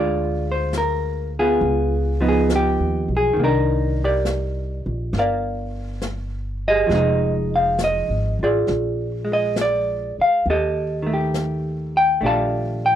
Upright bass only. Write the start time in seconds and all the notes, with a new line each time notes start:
Already playing: D2
1.61 C#2
2.80 D#2
3.08 B1
3.37 C2
4.86 A#1
5.13 G1
6.89 F1
8.09 G#1
8.39 A1
8.69 A#1
10.18 muted upright bass stroke
10.46 D#2
12.22 A#1